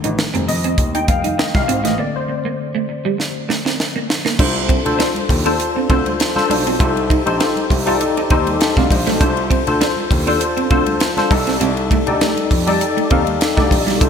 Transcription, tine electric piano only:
Already playing: D#3 G3 A3 D4
0.48 D#5
0.95 G5
1.09 F5
1.39 D#5
1.55 F5
1.85 D#5
1.98 D3 A3 C4 D5
2.16 C5
4.39 D4 F4 A4 C5
4.85 D4 F4 A4 C5
5.45 D4 F4 A4 C5
5.89 D4 F4 A4 C5
6.35 D4 F4 A4 C5
6.79 D#4 G4 A4 C5
7.26 D#4 G4 A4 C5
7.86 D#4 G4 A4 D5
8.30 D#4 G4 A4 C5
8.61 F5 A5
8.77 D5 F5
8.91 C5 D#5
9.07 A4 C5
9.20 D4 F4 A4 C5
9.67 D4 F4 A4 C5
10.27 D4 F4 A4 C5
10.70 D4 F4 A4 C5
11.17 D4 F4 A4 C5
11.30 D#4 G4 A4 D5
12.07 D#4 G4 A4 D5
12.67 D#4 G4 A4 D5
13.10 D#4 G4 A4 F5
13.56 D#4 G4 A4 D5
14.00 D4 F4 A4 C5

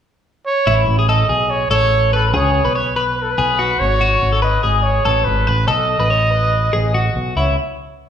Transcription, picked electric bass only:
0.67 A1
0.87 A1
1.29 B1
1.71 A1
2.33 C#2
2.65 B1
3.38 B1
3.80 G#1
4.22 G#1
4.63 G#1
5.06 A1
5.27 G#1
5.47 A1
5.68 B1
5.99 A1
6.73 A1
7.16 B1
7.36 C#2

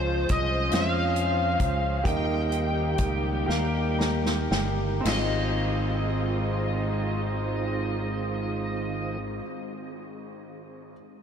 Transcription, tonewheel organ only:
Already playing: F3 C#4 G#4 C5
2.05 D#3 G3 A#3 G4
5.05 D#3 G#3 C4 F4

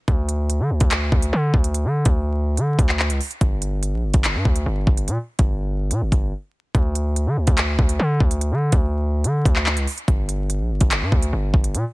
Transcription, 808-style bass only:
0.08 D2
0.60 D3
0.70 D2
0.81 D2
1.12 D2
1.33 D3
1.54 D2
1.85 D3
2.06 D2
2.58 D3
2.79 D2
3.10 C#2
3.41 G1
3.93 A#1
4.04 G1
4.14 G1
4.35 G2
4.45 D2
4.66 G1
4.87 G1
5.08 A#2
5.39 G1
5.91 A#2
6.02 G1
6.12 G1
6.75 D2
7.27 D3
7.37 D2
7.47 D2
7.79 D2
8.00 D3
8.20 D2
8.52 D3
8.72 D2
9.25 D3
9.45 D2
9.77 C#2
10.08 G1
10.60 A#1
10.70 G1
10.81 G1
11.02 G2
11.12 D2
11.33 G1
11.54 G1
11.75 A#2

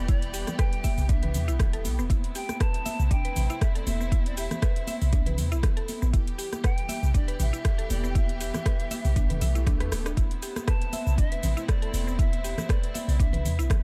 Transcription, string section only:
Already playing: E3 G3 B3 G4
2.10 A3 C4 E4
6.14 E3 G3 B3 G4
10.17 A3 C4 E4

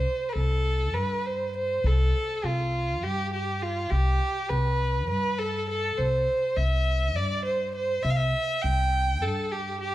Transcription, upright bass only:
0.36 C2
0.95 G2
1.84 C2
2.44 C2
3.02 G2
3.92 C2
4.50 C2
5.09 G2
5.99 C2
6.57 C2
7.17 G2
8.05 C2
8.64 C2
9.23 G2

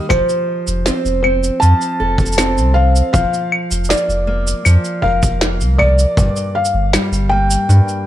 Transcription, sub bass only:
0.10 F1
0.67 F1
1.05 F1
1.62 F2
2.00 F1
2.57 C2
3.14 F1
3.71 F1
4.08 F1
4.66 F2
5.02 F1
5.60 C2
6.17 G1
6.74 G1
7.12 G1
7.69 G2

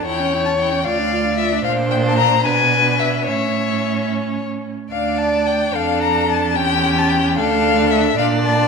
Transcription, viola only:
0.07 E4
0.20 C#4
0.34 E4
0.46 C#4
0.59 E4
0.73 C#4
0.85 F4
0.98 D4
1.12 F4
1.25 D4
1.38 F4
1.52 D4
1.66 D4
2.46 D4
3.28 C#4
4.92 D4
5.74 D4
6.55 C#4
7.36 D4
8.17 D4

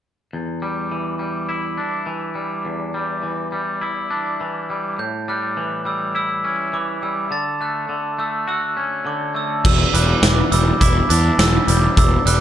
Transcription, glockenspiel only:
4.99 G6
5.29 F#6
5.87 E6
6.16 E6
6.74 D6
7.03 E6
7.32 A6
7.62 F#6
8.20 E6
8.49 E6
9.07 D6
9.36 E6
9.65 E6
9.94 F#6
10.23 D6
10.52 E6
10.81 D6
11.39 E6
11.98 E6
12.27 F#6

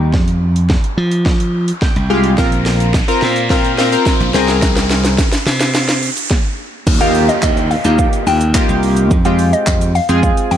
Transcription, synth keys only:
Already playing: G3 D#4 G4
1.82 G5
2.10 G#3 F4 G4 F5
2.38 C4 F4 A#4
3.08 C4 F4 A#4
3.50 C4 F4 A#4
3.78 C4 F4 A#4
3.92 C4 F4 A#4
4.34 C4 G#4 A#4
7.00 A#3 D#4 F4 G4
7.85 A#3 D#4 F4 G4
8.55 A#3 D#4 F4 G4
9.25 G#3 C4 F4 G4
10.09 G#3 C4 F4 G#4

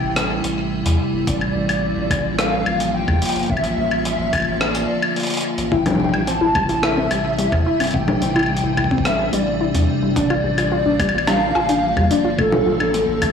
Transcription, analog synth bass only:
Already playing: A1
0.44 A1
0.86 E2
1.13 G1
1.27 A1
1.55 A1
1.97 A1
2.66 A1
3.08 E2
3.36 G1
3.50 A1
3.77 A1
4.19 A1
5.58 A1
5.72 A1
6.00 A1
6.41 A1
7.11 A1
7.52 E2
7.80 G1
7.94 A1
8.22 A1
8.64 A1
9.33 A1
9.75 E2
10.02 G1
10.16 A1
10.44 A1
10.86 A1
11.55 A1
11.97 E2
12.25 G1
12.38 A1
12.66 A1
13.08 A1

